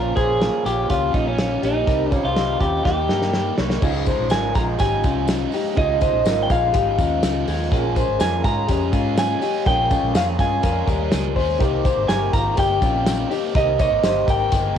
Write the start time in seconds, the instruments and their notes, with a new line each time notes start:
Already playing: fingered electric bass A#1, overdriven electric guitar A#2 F3 A#3 C#4 F4, reed electric piano A#3 C#4 F4, clean electric guitar F4 A#4
0.15 fingered electric bass A#1, overdriven electric guitar A#3 C#4 F4, clean electric guitar G#4 C5, kick, closed hi-hat
0.40 overdriven electric guitar F3 A#3 C#4 F4, clean electric guitar F4 A#4, snare, closed hi-hat
0.65 fingered electric bass A#1, overdriven electric guitar A#3 C#4 F4, clean electric guitar F4 G4 G#4, closed hi-hat
0.89 fingered electric bass C#2, overdriven electric guitar A#2 F3 A#3 C#4 F4, clean electric guitar C#4 F4 G4, kick, closed hi-hat
1.13 fingered electric bass A#1, reed electric piano A#3 C#4 F4, overdriven electric guitar A#3 C#4 F4, clean electric guitar C#4 D#4 F4, kick, closed hi-hat
1.28 clean electric guitar C#4
1.38 overdriven electric guitar F3 A#3 C#4 F4, snare, closed hi-hat
1.62 fingered electric bass A#1, overdriven electric guitar A#3 C#4 F4, clean electric guitar D#4 G4, closed hi-hat
1.86 fingered electric bass C2, overdriven electric guitar C3 G3 C4 D#4, reed electric piano C4 D#4 G4, clean electric guitar G4 A#4, kick, closed hi-hat
2.10 overdriven electric guitar G3 C4 D#4, clean electric guitar C#4 F4 G#4, kick, closed hi-hat
2.24 fingered electric bass C2, clean electric guitar F4
2.35 overdriven electric guitar C3 G3 C4 D#4, clean electric guitar D#4 G4, snare, closed hi-hat
2.60 fingered electric bass D#2, overdriven electric guitar G3 C4 D#4, clean electric guitar C#4 F4 G4, kick, closed hi-hat
2.84 fingered electric bass D#2, overdriven electric guitar D#3 G3 A#3 D#4, reed electric piano A#3 D#4 G4, clean electric guitar D#4 G4, kick, snare
3.09 fingered electric bass G2, overdriven electric guitar G3 A#3 D#4, clean electric guitar G4 A#4, snare
3.22 snare
3.33 overdriven electric guitar D#3 G3 A#3 D#4, snare
3.58 fingered electric bass C2, overdriven electric guitar G3 A#3 D#4, clean electric guitar A#4 C#5, snare
3.70 snare
3.82 fingered electric bass C#2, overdriven electric guitar C#3 F3 G#3 D#4, reed electric piano C#4 D#4 F4, clean electric guitar F4 G#4, kick, crash, tambourine
4.06 overdriven electric guitar F3 G#3 D#4, clean electric guitar G#4 C5, kick, closed hi-hat, tambourine
4.20 fingered electric bass A#1
4.30 fingered electric bass G#1, overdriven electric guitar C#3 F3 G#3 D#4, clean electric guitar F4 A#4 G#5, snare, closed hi-hat, tambourine
4.54 fingered electric bass A#1, overdriven electric guitar F3 G#3 D#4, clean electric guitar F4 G#4 A#5, kick, closed hi-hat, tambourine
4.78 fingered electric bass G#1, overdriven electric guitar C#3 F3 G#3 D#4, clean electric guitar D#4 G4 G#5, kick, closed hi-hat, tambourine
5.03 fingered electric bass C2, overdriven electric guitar F3 G#3 D#4, clean electric guitar C#4 F4, kick, closed hi-hat, tambourine
5.27 overdriven electric guitar C#3 F3 G#3 D#4, snare, closed hi-hat, tambourine
5.51 overdriven electric guitar F3 G#3 D#4, clean electric guitar D#4 G4, open hi-hat, tambourine
5.75 fingered electric bass C#2, overdriven electric guitar C#3 F3 G#3 D#4, reed electric piano C#4 D#4 F4, clean electric guitar F4 G#4 D#5, kick, closed hi-hat
5.99 overdriven electric guitar F3 G#3 D#4, clean electric guitar G#4 C5 D#5, kick, closed hi-hat, tambourine
6.13 fingered electric bass A#1
6.24 fingered electric bass G#1, overdriven electric guitar C#3 F3 G#3 D#4, clean electric guitar F4 A#4, snare, closed hi-hat, tambourine
6.43 clean electric guitar G5
6.49 fingered electric bass A#1, overdriven electric guitar F3 G#3 D#4, clean electric guitar F4 G#4 F5, kick, closed hi-hat, tambourine
6.73 fingered electric bass G#1, overdriven electric guitar C#3 F3 G#3 D#4, clean electric guitar D#4 G4, kick, closed hi-hat, tambourine
6.98 fingered electric bass D#2, overdriven electric guitar F3 G#3 D#4, clean electric guitar C#4 F4, kick, closed hi-hat, tambourine
7.22 fingered electric bass C#2, overdriven electric guitar C#3 F3 G#3 D#4, snare, closed hi-hat, tambourine
7.45 fingered electric bass D#2, overdriven electric guitar F3 G#3 D#4, clean electric guitar F4 G#4, open hi-hat
7.70 fingered electric bass A#1, overdriven electric guitar A#2 F3 G#3 C#4 G#4, reed electric piano C#4 G#4 A#4, clean electric guitar F4 G#4, kick, closed hi-hat
7.95 overdriven electric guitar G#3 C#4 G#4, clean electric guitar G#4 C5, kick, closed hi-hat, tambourine
8.09 fingered electric bass G#1
8.19 fingered electric bass F2, overdriven electric guitar A#2 F3 G#3 C#4 G#4, clean electric guitar F4 A#4 G#5, snare, closed hi-hat, tambourine
8.43 fingered electric bass G#2, overdriven electric guitar G#3 C#4 G#4, clean electric guitar F4 G#4 A#5, kick, closed hi-hat, tambourine
8.67 fingered electric bass F2, overdriven electric guitar F3 G#3 C#4 G#4, clean electric guitar C#4 G4, kick, closed hi-hat, tambourine
8.92 fingered electric bass G#2, overdriven electric guitar G#3 C#4 G#4, clean electric guitar C#4 F4, kick, closed hi-hat, tambourine
9.16 overdriven electric guitar A#2 F3 G#3 C#4 G#4, clean electric guitar G#5, snare, closed hi-hat, tambourine
9.40 overdriven electric guitar G#3 C#4 G#4, clean electric guitar D#4 G4, open hi-hat, tambourine
9.65 fingered electric bass A#1, overdriven electric guitar A#2 F3 G#3 C#4 G#4, reed electric piano G#3 C#4 A#4, clean electric guitar F4 G#4 G5, kick, closed hi-hat
9.89 overdriven electric guitar G#3 C#4 G#4, clean electric guitar C#4 F4, kick, closed hi-hat, tambourine
10.03 fingered electric bass A#1
10.13 fingered electric bass F2, overdriven electric guitar A#2 F3 G#3 C#4 G#4, clean electric guitar F4 G#4 F5, snare, closed hi-hat, tambourine
10.37 fingered electric bass G2, overdriven electric guitar G#3 C#4 G#4, clean electric guitar C#4 F4 G#5, kick, closed hi-hat, tambourine
10.62 fingered electric bass F2, overdriven electric guitar F3 G#3 C#4 G#4, clean electric guitar F4 A#4, kick, closed hi-hat, tambourine
10.86 fingered electric bass D#2, clean electric guitar G3 A#4, overdriven electric guitar G#3 C#4 G#4, kick, closed hi-hat, tambourine
11.11 fingered electric bass C#2, overdriven electric guitar A#2 F3 G#3 C#4 G#4, snare, closed hi-hat, tambourine
11.36 fingered electric bass D#2, overdriven electric guitar G#3 C#4 G#4, clean electric guitar G#4 C5, kick, open hi-hat
11.59 fingered electric bass C2, overdriven electric guitar C3 D#3 A#3 C4 G4, reed electric piano D#4 A#4 C5, clean electric guitar D#4 G4, kick, closed hi-hat, tambourine
11.84 overdriven electric guitar A#3 C4 G4, clean electric guitar G#4 C5, kick, closed hi-hat, tambourine
11.97 fingered electric bass G#1
12.08 fingered electric bass G1, overdriven electric guitar C3 D#3 A#3 C4 G4, clean electric guitar G4 A#4 G#5, snare, closed hi-hat, tambourine
12.33 fingered electric bass G#1, overdriven electric guitar A#3 C4 G4, clean electric guitar F4 G#4 A#5, kick, closed hi-hat, tambourine
12.57 fingered electric bass G1, overdriven electric guitar D#3 A#3 C4 G4, clean electric guitar D#4 G4 G5, kick, closed hi-hat, tambourine
12.82 fingered electric bass A#1, overdriven electric guitar A#3 C4 G4, clean electric guitar C#4 F4, kick, closed hi-hat, tambourine
13.06 overdriven electric guitar C3 D#3 A#3 C4 G4, snare, closed hi-hat, tambourine
13.30 overdriven electric guitar A#3 C4 G4, clean electric guitar D#4 G4, open hi-hat, tambourine
13.54 fingered electric bass C2, overdriven electric guitar C3 D#3 A#3 C4 G4, reed electric piano D#4 A#4 C5, clean electric guitar G4 A#4 D#5, kick, closed hi-hat
13.79 overdriven electric guitar A#3 C4 G4, clean electric guitar A#4 C#5 D#5, kick, closed hi-hat, tambourine
13.91 fingered electric bass G#1
14.03 fingered electric bass G1, overdriven electric guitar C3 D#3 A#3 C4 G4, clean electric guitar G4 C5, snare, closed hi-hat, tambourine
14.27 fingered electric bass G#1, overdriven electric guitar A#3 C4 G4, clean electric guitar G4 A#4 G5, kick, closed hi-hat, tambourine
14.51 fingered electric bass G1, overdriven electric guitar D#3 A#3 C4 G4, clean electric guitar D#4 G#4, kick, closed hi-hat, tambourine